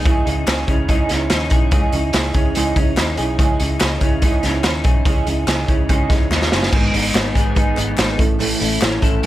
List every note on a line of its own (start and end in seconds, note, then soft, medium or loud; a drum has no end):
0.00 0.26 D#4 medium
0.05 0.23 C#2 loud
0.05 0.26 C#3 medium
0.05 0.26 G#3 medium
0.05 0.26 C#4 medium
0.05 0.26 E4 medium
0.05 0.25 G#4 medium
0.05 0.24 D#5 medium
0.05 kick loud
0.05 closed hi-hat medium
0.25 0.44 C#2 loud
0.25 0.45 C#4 soft
0.25 0.89 D#4 medium
0.25 0.46 E4 soft
0.25 0.47 D#5 medium
0.25 closed hi-hat medium
0.46 0.64 C#2 loud
0.46 0.68 C#4 medium
0.46 0.68 E4 medium
0.46 0.67 G#4 medium
0.46 0.66 D#5 medium
0.46 snare loud
0.46 clap loud
0.46 closed hi-hat medium
0.67 0.85 C#2 loud
0.67 0.88 C#4 medium
0.67 0.88 E4 medium
0.67 0.89 G#4 medium
0.67 0.89 D#5 medium
0.67 kick medium
0.67 closed hi-hat medium
0.88 1.06 C#2 loud
0.88 1.10 C#3 medium
0.88 1.10 G#3 medium
0.88 1.10 C#4 medium
0.88 1.30 D#4 medium
0.88 1.10 E4 medium
0.88 1.09 G#4 loud
0.88 1.08 D#5 medium
0.88 kick medium
0.88 closed hi-hat medium
1.09 1.27 C#2 medium
1.09 1.29 C#4 medium
1.09 1.30 E4 medium
1.09 1.31 G#4 medium
1.09 1.30 D#5 medium
1.09 snare soft
1.09 closed hi-hat medium
1.30 1.48 D#2 medium
1.30 1.51 C#4 medium
1.30 1.93 D#4 medium
1.30 1.51 E4 medium
1.30 1.50 G#4 medium
1.30 1.50 D#5 medium
1.30 snare loud
1.30 clap medium
1.30 closed hi-hat medium
1.50 1.72 B1 medium
1.50 1.72 C#4 medium
1.50 1.72 E4 medium
1.50 1.72 G#4 medium
1.50 kick loud
1.50 closed hi-hat medium
1.71 1.89 C#2 loud
1.71 1.93 C#3 loud
1.71 1.93 G#3 medium
1.71 1.93 C#4 medium
1.71 1.93 E4 loud
1.71 1.93 G#4 loud
1.71 1.92 D#5 loud
1.71 kick loud
1.71 closed hi-hat medium
1.92 2.10 C#2 medium
1.92 2.12 C#4 medium
1.92 2.55 D#4 medium
1.92 2.13 E4 medium
1.92 2.13 G#4 medium
1.92 2.14 D#5 medium
1.92 closed hi-hat medium
2.13 2.31 C#2 loud
2.13 2.35 C#4 medium
2.13 2.35 E4 medium
2.13 2.34 G#4 medium
2.13 2.33 D#5 medium
2.13 snare loud
2.13 clap medium
2.13 closed hi-hat medium
2.34 2.52 C#2 loud
2.34 2.55 C#4 medium
2.34 2.55 E4 medium
2.34 2.55 G#4 medium
2.34 2.55 D#5 medium
2.34 kick medium
2.34 closed hi-hat medium
2.55 2.73 C#2 loud
2.55 2.76 C#3 medium
2.55 2.77 G#3 loud
2.55 2.77 C#4 loud
2.55 2.97 D#4 medium
2.55 2.77 E4 loud
2.55 2.77 G#4 loud
2.55 2.76 D#5 loud
2.55 closed hi-hat medium
2.76 2.93 C#2 medium
2.76 2.96 C#4 medium
2.76 2.97 E4 medium
2.76 2.98 G#4 medium
2.76 2.98 D#5 medium
2.76 kick medium
2.76 closed hi-hat medium
2.97 3.15 D#2 medium
2.97 3.18 C#4 medium
2.97 3.59 D#4 medium
2.97 3.18 E4 medium
2.97 3.17 G#4 medium
2.97 3.16 D#5 medium
2.97 snare loud
2.97 clap loud
2.97 closed hi-hat medium
3.17 3.39 B1 medium
3.17 3.38 C#4 soft
3.17 3.39 E4 medium
3.17 3.39 G#4 medium
3.17 3.39 D#5 medium
3.17 closed hi-hat medium
3.39 3.56 C#2 loud
3.39 3.60 C#3 medium
3.39 3.60 G#3 loud
3.39 3.60 C#4 loud
3.39 3.60 E4 medium
3.39 3.59 G#4 loud
3.39 3.58 D#5 medium
3.39 kick loud
3.39 closed hi-hat medium
3.59 3.77 C#2 medium
3.59 3.79 C#4 soft
3.59 4.21 D#4 medium
3.59 3.80 E4 medium
3.59 3.81 G#4 medium
3.59 3.81 D#5 medium
3.59 closed hi-hat medium
3.79 3.98 C#2 loud
3.79 4.01 C#4 medium
3.79 4.02 E4 medium
3.79 4.02 G#4 medium
3.79 4.01 D#5 medium
3.79 snare loud
3.79 clap medium
3.79 closed hi-hat medium
4.01 4.19 C#2 medium
4.01 4.23 C#4 soft
4.01 4.23 E4 medium
4.01 4.23 G#4 medium
4.01 4.23 D#5 medium
4.01 kick medium
4.01 closed hi-hat medium
4.22 4.40 C#2 loud
4.22 4.43 C#3 medium
4.22 4.44 G#3 medium
4.22 4.44 C#4 medium
4.22 4.63 D#4 medium
4.22 4.44 E4 loud
4.22 4.43 G#4 loud
4.22 4.42 D#5 medium
4.22 kick medium
4.22 closed hi-hat medium
4.43 4.61 C#2 loud
4.43 4.62 C#4 medium
4.43 4.63 E4 medium
4.43 4.64 G#4 medium
4.43 4.64 D#5 medium
4.43 snare soft
4.43 closed hi-hat medium
4.63 4.81 D#2 medium
4.63 4.85 C#4 medium
4.63 5.26 D#4 medium
4.63 4.85 E4 medium
4.63 4.84 D#5 medium
4.63 snare loud
4.63 clap medium
4.63 closed hi-hat medium
4.84 5.02 B1 medium
4.84 5.05 C#4 soft
4.84 5.05 E4 soft
4.84 5.06 G#4 medium
4.84 5.06 D#5 medium
4.84 kick loud
4.84 closed hi-hat medium
5.05 5.23 C#2 loud
5.05 5.27 C#3 medium
5.05 5.27 G#3 medium
5.05 5.27 C#4 loud
5.05 5.26 E4 loud
5.05 5.26 G#4 medium
5.05 5.25 D#5 medium
5.05 kick loud
5.05 closed hi-hat medium
5.26 5.44 C#2 loud
5.26 5.46 C#4 soft
5.26 5.89 D#4 medium
5.26 5.47 E4 medium
5.26 5.48 G#4 medium
5.26 5.47 D#5 medium
5.26 closed hi-hat medium
5.47 5.65 C#2 loud
5.47 5.68 C#4 medium
5.47 5.68 E4 medium
5.47 5.67 G#4 medium
5.47 5.66 D#5 medium
5.47 snare loud
5.47 clap medium
5.47 closed hi-hat medium
5.67 5.86 C#2 loud
5.67 5.89 C#4 soft
5.67 5.89 E4 medium
5.67 5.89 G#4 medium
5.67 5.89 D#5 medium
5.67 kick medium
5.67 closed hi-hat medium
5.89 6.07 C#2 loud
5.89 6.10 C#3 loud
5.89 6.10 G#3 loud
5.89 6.11 C#4 loud
5.89 6.30 D#4 medium
5.89 6.10 E4 medium
5.89 6.09 G#4 loud
5.89 6.08 D#5 loud
5.89 kick medium
5.89 closed hi-hat medium
6.09 6.31 C#2 loud
6.09 6.29 C#4 medium
6.09 6.30 E4 medium
6.09 6.31 G#4 medium
6.09 6.30 D#5 medium
6.09 kick loud
6.09 snare soft
6.09 closed hi-hat medium
6.30 6.48 D#2 loud
6.30 6.52 C#4 medium
6.30 6.77 D#4 medium
6.30 6.52 E4 medium
6.30 6.52 G#4 medium
6.30 6.50 D#5 medium
6.30 snare medium
6.30 clap medium
6.42 snare medium
6.52 6.69 F#1 medium
6.52 6.72 C#4 soft
6.52 6.73 E4 soft
6.52 6.72 G#4 medium
6.52 6.73 D#5 medium
6.52 snare loud
6.63 snare medium
6.72 6.90 G#1 loud
6.72 8.18 G#2 medium
6.72 6.93 G#3 medium
6.72 6.94 B3 medium
6.72 6.93 D#4 medium
6.72 6.91 G#4 medium
6.72 kick loud
6.72 crash loud
6.93 7.11 G#1 loud
6.93 7.13 B3 medium
6.93 7.14 D#4 medium
6.93 7.14 G#4 medium
6.93 hi-hat pedal medium
6.93 open hi-hat medium
7.13 7.32 G#1 loud
7.13 7.35 G#3 medium
7.13 7.35 B3 medium
7.13 7.35 D#4 medium
7.13 7.33 G#4 medium
7.13 snare loud
7.13 clap medium
7.13 hi-hat pedal medium
7.13 open hi-hat medium
7.35 7.53 G#1 loud
7.35 7.55 B3 soft
7.35 7.55 D#4 medium
7.35 7.56 G#4 medium
7.35 kick medium
7.35 hi-hat pedal medium
7.35 open hi-hat medium
7.55 7.77 G#3 medium
7.55 7.77 B3 loud
7.55 7.77 D#4 medium
7.55 7.75 G#4 loud
7.55 kick medium
7.55 hi-hat pedal medium
7.55 open hi-hat medium
7.76 7.95 G#1 medium
7.76 7.97 B3 medium
7.76 7.97 D#4 medium
7.76 7.98 G#4 medium
7.76 clap medium
7.76 hi-hat pedal medium
7.76 open hi-hat medium
7.97 8.15 G#1 medium
7.97 8.18 G#3 medium
7.97 8.19 B3 medium
7.97 8.19 D#4 medium
7.97 8.18 G#4 medium
7.97 snare loud
7.97 clap loud
7.97 hi-hat pedal medium
7.97 open hi-hat medium
8.18 8.54 A1 medium
8.18 8.39 A2 medium
8.18 8.38 A3 medium
8.18 8.39 C#4 medium
8.18 8.39 E4 medium
8.18 8.39 A4 medium
8.18 kick loud
8.18 hi-hat pedal medium
8.18 open hi-hat medium
8.39 8.60 A2 medium
8.39 8.60 E3 medium
8.39 8.61 A3 medium
8.39 8.60 C#4 loud
8.39 8.59 E4 medium
8.39 8.58 A4 medium
8.39 hi-hat pedal medium
8.39 open hi-hat medium
8.60 8.78 A1 loud
8.60 8.79 A3 medium
8.60 8.80 C#4 medium
8.60 8.81 E4 medium
8.60 8.81 A4 medium
8.60 hi-hat pedal medium
8.60 open hi-hat medium
8.80 8.99 A1 loud
8.80 9.02 A3 medium
8.80 9.01 C#4 medium
8.80 9.01 E4 medium
8.80 9.00 A4 medium
8.80 snare loud
8.80 clap loud
8.80 hi-hat pedal medium
8.80 open hi-hat medium
9.01 9.20 A1 loud
9.01 9.22 A3 soft
9.01 9.23 C#4 medium
9.01 9.23 E4 medium
9.01 9.23 A4 medium
9.01 kick medium
9.01 hi-hat pedal medium
9.01 open hi-hat medium
9.23 9.26 A2 loud
9.23 open hi-hat medium